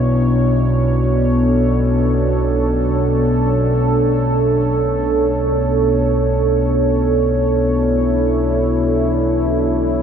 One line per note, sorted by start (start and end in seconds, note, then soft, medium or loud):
0.00 10.03 B1 medium
0.00 6.83 B2 medium
0.00 10.03 B2 medium
0.00 10.03 D4 medium
0.00 2.23 E4 medium
0.00 10.03 C#5 medium
1.15 9.89 A4 medium
7.63 10.03 E4 medium